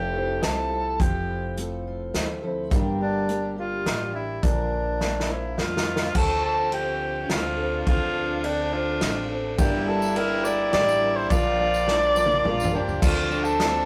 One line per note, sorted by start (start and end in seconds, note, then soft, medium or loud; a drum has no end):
0.00 0.38 F1 loud
0.00 0.13 F3 medium
0.00 0.96 F3 medium
0.00 0.97 A3 medium
0.00 0.14 C4 medium
0.00 0.14 E4 medium
0.00 0.44 G4 medium
0.00 0.12 A4 medium
0.00 2.72 A4 medium
0.13 0.42 C4 soft
0.13 0.43 E4 soft
0.13 0.72 F4 medium
0.13 0.42 A4 soft
0.42 0.97 C2 medium
0.42 0.71 F3 medium
0.42 0.71 C4 medium
0.42 0.71 E4 medium
0.42 0.97 E4 medium
0.42 1.02 A4 loud
0.42 0.69 A4 medium
0.42 snare medium
0.42 closed hi-hat medium
0.71 0.99 C4 soft
0.71 1.00 E4 soft
0.71 0.97 F4 soft
0.71 0.99 A4 soft
1.00 2.10 F1 loud
1.00 1.55 F3 medium
1.00 2.15 F3 medium
1.00 1.57 C4 medium
1.00 1.86 F4 medium
1.00 1.57 G4 medium
1.00 1.58 A4 medium
1.00 kick loud
1.00 closed hi-hat medium
1.30 2.69 E4 medium
1.57 2.13 F3 medium
1.57 2.68 A3 medium
1.57 2.14 C4 medium
1.57 2.16 A4 medium
1.57 closed hi-hat medium
1.87 2.69 F4 medium
2.14 2.68 D2 medium
2.14 2.43 E3 medium
2.14 2.43 F3 medium
2.14 2.43 C4 medium
2.14 2.42 E4 medium
2.14 2.41 A4 medium
2.14 snare medium
2.14 closed hi-hat medium
2.42 2.71 F3 medium
2.42 2.71 C4 soft
2.42 2.72 E4 soft
2.42 2.71 A4 medium
2.70 3.82 G1 loud
2.70 3.28 G2 medium
2.70 3.28 D3 medium
2.70 3.27 G3 medium
2.70 4.43 G3 medium
2.70 3.29 A#3 medium
2.70 3.30 D4 medium
2.70 3.28 D4 medium
2.70 3.29 G4 medium
2.70 3.00 G4 medium
2.70 4.41 A#4 medium
2.70 kick loud
2.70 closed hi-hat medium
3.01 3.54 D4 medium
3.01 4.40 G4 medium
3.28 3.57 G3 medium
3.28 3.58 A#3 medium
3.28 3.58 D4 medium
3.28 3.57 D4 medium
3.28 3.55 G4 medium
3.28 closed hi-hat medium
3.56 3.84 G3 soft
3.56 3.85 A#3 soft
3.56 3.86 D4 soft
3.56 3.86 D4 medium
3.56 4.11 F4 medium
3.56 3.85 G4 soft
3.85 4.40 A1 medium
3.85 4.43 G3 medium
3.85 4.43 A#3 medium
3.85 4.15 D4 medium
3.85 4.44 D4 medium
3.85 4.44 G4 medium
3.85 snare medium
3.85 closed hi-hat medium
4.15 4.73 D4 medium
4.15 4.45 E4 medium
4.43 5.54 A#1 loud
4.43 5.00 A#2 medium
4.43 6.12 A#2 medium
4.43 5.00 D3 medium
4.43 4.98 F3 medium
4.43 5.00 A#3 medium
4.43 5.29 D4 medium
4.43 5.00 D4 medium
4.43 5.86 A#4 medium
4.43 5.01 A#4 medium
4.43 kick loud
4.43 closed hi-hat medium
4.73 5.58 D4 medium
5.00 5.29 F3 medium
5.00 6.12 A#3 medium
5.00 5.29 A#3 medium
5.00 5.29 D4 medium
5.00 5.27 A#4 medium
5.00 snare medium
5.20 snare medium
5.29 5.56 F3 soft
5.29 5.57 A#3 soft
5.29 5.58 D4 soft
5.29 5.61 E4 medium
5.29 6.12 F4 medium
5.29 5.58 A#4 soft
5.57 6.12 F2 medium
5.57 6.14 F3 medium
5.57 6.15 A#3 medium
5.57 6.12 D4 medium
5.57 6.15 D4 medium
5.57 6.18 F4 loud
5.57 6.16 A#4 medium
5.57 snare medium
5.77 snare medium
5.88 6.12 A#4 medium
5.96 snare medium
6.14 7.26 D2 medium
6.14 6.75 D3 medium
6.14 6.70 F3 medium
6.14 6.71 C4 medium
6.14 7.19 C4 medium
6.14 6.73 D4 medium
6.14 6.44 A4 loud
6.14 6.73 A4 medium
6.14 kick loud
6.14 crash loud
6.45 6.71 A4 loud
6.71 7.27 F3 medium
6.71 7.29 C4 medium
6.71 7.31 D4 medium
6.71 7.26 G4 loud
6.71 7.31 A4 medium
6.71 ride medium
7.22 7.31 C#4 medium
7.29 7.84 D2 medium
7.29 7.58 F3 medium
7.29 7.59 C4 medium
7.29 9.58 D4 loud
7.29 7.58 D4 medium
7.29 7.84 F4 medium
7.29 7.56 A4 medium
7.29 snare medium
7.29 ride medium
7.57 7.87 C4 soft
7.57 7.87 D4 soft
7.57 7.86 A4 medium
7.87 8.98 D2 loud
7.87 8.44 D3 medium
7.87 8.41 F3 medium
7.87 8.43 C4 medium
7.87 8.45 D4 medium
7.87 8.46 F4 loud
7.87 8.45 A4 medium
7.87 kick loud
7.87 ride medium
8.43 8.72 F3 medium
8.43 8.73 C4 medium
8.43 8.75 D4 medium
8.43 8.72 D4 medium
8.43 8.70 A4 medium
8.43 ride medium
8.72 9.01 C4 soft
8.72 9.02 D4 soft
8.72 9.32 F4 medium
8.72 9.01 A4 medium
9.00 9.56 A1 medium
9.00 9.30 F3 medium
9.00 9.30 C4 medium
9.00 9.29 D4 medium
9.00 9.28 A4 medium
9.00 snare medium
9.00 ride medium
9.29 9.58 C4 soft
9.29 9.58 D4 soft
9.29 9.58 A4 medium
9.57 10.69 G1 loud
9.57 11.27 G1 medium
9.57 10.15 G2 medium
9.57 11.27 G2 medium
9.57 10.16 D3 medium
9.57 9.83 G3 medium
9.57 10.13 G3 medium
9.57 10.15 A#3 medium
9.57 9.83 D4 medium
9.57 10.16 D4 medium
9.57 11.32 E4 loud
9.57 9.89 G4 loud
9.57 11.30 G4 medium
9.57 9.83 A#4 medium
9.57 10.18 A#4 medium
9.57 9.83 D5 medium
9.57 12.99 D5 medium
9.57 12.99 A#5 medium
9.57 kick loud
9.57 ride medium
9.57 tambourine loud
9.86 10.11 G3 medium
9.86 10.11 D4 medium
9.86 10.18 A4 medium
9.86 10.12 A#4 medium
9.86 10.12 D5 medium
10.02 tambourine medium
10.14 10.44 G3 medium
10.14 10.40 G3 medium
10.14 10.45 A#3 medium
10.14 10.40 D4 medium
10.14 10.44 D4 medium
10.14 10.40 A#4 medium
10.14 10.46 A#4 loud
10.14 10.43 A#4 medium
10.14 10.40 E5 medium
10.14 ride medium
10.44 10.69 G3 medium
10.44 10.72 G3 soft
10.44 10.73 A#3 soft
10.44 10.69 D4 medium
10.44 10.74 D4 medium
10.44 10.73 A#4 medium
10.44 10.69 A#4 medium
10.44 10.73 D5 loud
10.44 10.69 D5 medium
10.44 tambourine loud
10.72 11.28 A1 medium
10.72 10.97 G3 medium
10.72 11.30 G3 medium
10.72 11.30 A#3 medium
10.72 10.97 D4 medium
10.72 11.31 D4 medium
10.72 10.97 A#4 medium
10.72 11.31 A#4 medium
10.72 11.18 D5 loud
10.72 10.98 D5 medium
10.72 snare medium
10.72 ride medium
10.72 tambourine soft
10.89 tambourine medium
11.01 11.25 G3 medium
11.01 11.26 D4 medium
11.01 11.26 A#4 medium
11.01 11.26 D5 medium
11.16 11.30 C5 loud
11.30 12.98 A#1 medium
11.30 12.41 A#1 medium
11.30 11.88 A#2 medium
11.30 12.98 A#2 medium
11.30 11.88 D3 medium
11.30 11.54 F3 medium
11.30 11.85 F3 medium
11.30 11.87 A#3 medium
11.30 11.55 D4 medium
11.30 11.88 D4 medium
11.30 11.89 F4 loud
11.30 13.01 F4 medium
11.30 11.55 A#4 medium
11.30 11.89 A#4 medium
11.30 12.70 D5 loud
11.30 11.55 D5 loud
11.30 kick loud
11.30 ride medium
11.30 tambourine loud
11.59 11.83 F3 medium
11.59 11.83 D4 medium
11.59 11.84 A#4 medium
11.59 11.84 D5 medium
11.74 tambourine medium
11.87 12.16 F3 medium
11.87 12.12 F3 medium
11.87 12.16 A#3 medium
11.87 12.12 D4 medium
11.87 12.47 D4 loud
11.87 12.15 D4 medium
11.87 12.12 A#4 medium
11.87 12.14 A#4 medium
11.87 12.12 D5 medium
11.87 snare medium
12.02 tambourine soft
12.15 12.40 F3 medium
12.15 12.42 F3 soft
12.15 12.44 A#3 medium
12.15 12.40 D4 medium
12.15 12.45 D4 medium
12.15 12.45 A#4 medium
12.15 12.41 A#4 medium
12.15 12.41 D5 loud
12.15 tambourine loud
12.26 high tom medium
12.31 tambourine soft
12.43 12.72 A#1 medium
12.43 12.73 F3 medium
12.43 12.69 F3 medium
12.43 12.73 A#3 medium
12.43 12.69 D4 medium
12.43 12.72 D4 medium
12.43 12.76 F4 loud
12.43 12.69 A#4 medium
12.43 12.71 A#4 medium
12.43 12.69 D5 medium
12.43 mid tom medium
12.60 mid tom loud
12.60 tambourine medium
12.72 12.86 E2 medium
12.72 12.97 F3 medium
12.72 13.01 F3 soft
12.72 13.02 A#3 medium
12.72 12.97 D4 medium
12.72 13.02 D4 medium
12.72 13.01 G4 medium
12.72 13.02 A#4 medium
12.72 12.98 A#4 medium
12.72 12.98 D5 medium
12.87 13.01 D2 medium
12.87 tambourine soft
13.01 13.85 D2 medium
13.01 13.85 D2 loud
13.01 13.62 D3 medium
13.01 13.85 D3 medium
13.01 13.26 F3 medium
13.01 13.57 F3 medium
13.01 13.26 C4 medium
13.01 13.58 C4 medium
13.01 13.26 D4 medium
13.01 13.60 D4 medium
13.01 13.85 D4 medium
13.01 13.45 F4 loud
13.01 13.26 A4 medium
13.01 13.60 A4 medium
13.01 13.27 D5 medium
13.01 kick loud
13.01 crash loud
13.01 tambourine medium
13.30 13.54 F3 medium
13.30 13.55 C4 medium
13.30 13.55 D4 medium
13.30 13.55 A4 medium
13.30 13.55 D5 medium
13.30 tambourine soft
13.44 13.85 A4 loud
13.44 tambourine medium
13.58 13.85 F3 medium
13.58 13.83 F3 medium
13.58 13.84 C4 medium
13.58 13.85 C4 medium
13.58 13.84 D4 medium
13.58 13.85 D4 medium
13.58 13.84 A4 medium
13.58 13.85 A4 medium
13.58 13.84 D5 medium
13.58 snare medium
13.58 ride medium